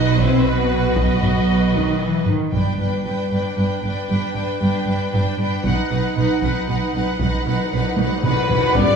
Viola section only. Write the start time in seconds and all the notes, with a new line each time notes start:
Already playing: F#4
0.19 E4
0.44 F#4
0.96 D#5
2.54 D4
2.80 D4
3.06 D4
3.32 D4
3.57 D4
3.84 D4
4.10 D4
4.37 D4
4.62 D4
4.88 D4
5.14 D4
5.39 D4
5.66 D#4
5.92 D#4
6.18 D#4
6.43 D#4
6.69 D#4
6.96 D#4
7.22 D#4
7.48 D#4
7.74 D#4
7.99 D#4
8.25 D#4
8.52 D#4
8.76 G3 B3